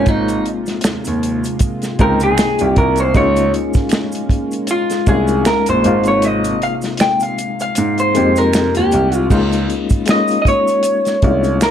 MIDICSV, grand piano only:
0, 0, Header, 1, 2, 480
1, 0, Start_track
1, 0, Key_signature, -4, "major"
1, 0, Tempo, 769231
1, 44, Time_signature, 4, 2, 24, 8
1, 7305, End_track
2, 0, Start_track
2, 0, Title_t, "Grand piano"
2, 0, Program_c, 0, 0
2, 0, Note_on_c, 0, 32, 92
2, 218, Note_off_c, 0, 32, 0
2, 534, Note_on_c, 0, 39, 27
2, 586, Note_off_c, 0, 39, 0
2, 668, Note_on_c, 0, 39, 79
2, 869, Note_off_c, 0, 39, 0
2, 1249, Note_on_c, 0, 37, 94
2, 1452, Note_off_c, 0, 37, 0
2, 1629, Note_on_c, 0, 36, 75
2, 1714, Note_off_c, 0, 36, 0
2, 1732, Note_on_c, 0, 36, 86
2, 1933, Note_off_c, 0, 36, 0
2, 1968, Note_on_c, 0, 37, 112
2, 2171, Note_off_c, 0, 37, 0
2, 3168, Note_on_c, 0, 36, 89
2, 3371, Note_off_c, 0, 36, 0
2, 3549, Note_on_c, 0, 34, 81
2, 3634, Note_off_c, 0, 34, 0
2, 3653, Note_on_c, 0, 32, 92
2, 4058, Note_off_c, 0, 32, 0
2, 4854, Note_on_c, 0, 44, 95
2, 5089, Note_off_c, 0, 44, 0
2, 5096, Note_on_c, 0, 41, 89
2, 5411, Note_off_c, 0, 41, 0
2, 5472, Note_on_c, 0, 39, 88
2, 5555, Note_off_c, 0, 39, 0
2, 5574, Note_on_c, 0, 36, 85
2, 5774, Note_off_c, 0, 36, 0
2, 5810, Note_on_c, 0, 37, 97
2, 6012, Note_off_c, 0, 37, 0
2, 7011, Note_on_c, 0, 36, 84
2, 7212, Note_off_c, 0, 36, 0
2, 7305, End_track
0, 0, End_of_file